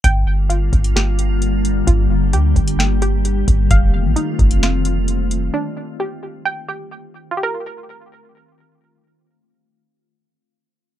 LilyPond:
<<
  \new Staff \with { instrumentName = "Synth pluck" } { \time 4/4 \key g \minor \tempo 4 = 131 g''4 f'4 g'2 | f'4 g'4 g''8 g'4. | f''4 ees'4 f'2 | d'4 g'4 g''8 g'4. |
<f' g' bes'>1~ | <f' g' bes'>1 | }
  \new Staff \with { instrumentName = "Ambient pad" } { \time 4/4 \key g \minor << { f'1 | g'1 | f'1 | r1 |
r1 | r1 | } \\ { <d g bes>1~ | <d g bes>1 | <ees a c'>1 | r1 |
r1 | r1 | } >> }
  \new Staff \with { instrumentName = "808-style bass" } { \clef bass \time 4/4 \key g \minor g,,4. g,,2~ g,,8 | g,,4 d,8 g,,2 g,,8 | f,,8. a,,16 r8 f,,2~ f,,8 | r1 |
r1 | r1 | }
  \new DrumStaff \with { instrumentName = "Drums" } \drummode { \time 4/4 <hh bd>4 hh8 <hh bd>16 hh16 sn8 hh8 hh8 hh8 | <hh bd>4 hh8 <hh bd>16 hh16 sn8 hh8 hh8 <hh bd>8 | <hh bd>4 hh8 <hh bd>16 hh16 sn8 hh8 hh8 hh8 | r4 r4 r4 r4 |
r4 r4 r4 r4 | r4 r4 r4 r4 | }
>>